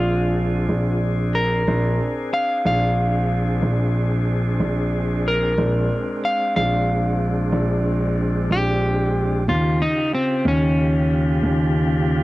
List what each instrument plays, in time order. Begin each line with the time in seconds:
Already playing: grand piano A#1, tonewheel organ C4 D4 G#4, clean electric guitar F4
0.69 grand piano A#1
1.35 clean electric guitar A#4
1.67 grand piano A#1, tonewheel organ C4 D4 G#4
2.34 clean electric guitar F5
2.65 grand piano A#1, clean electric guitar F5
3.62 grand piano A#1
4.60 grand piano A#1
5.28 clean electric guitar A#4
5.58 grand piano A#1, tonewheel organ G#3 C4 D4
6.25 clean electric guitar F5
6.56 grand piano A#1, clean electric guitar F5
7.52 grand piano A#1
8.50 grand piano A#1, clean electric guitar G4
9.48 grand piano D#2, tonewheel organ C#3 F4 G4, clean electric guitar F4
9.82 clean electric guitar D#4
10.15 clean electric guitar C4
10.45 grand piano D#2, clean electric guitar C#4
11.43 grand piano D#2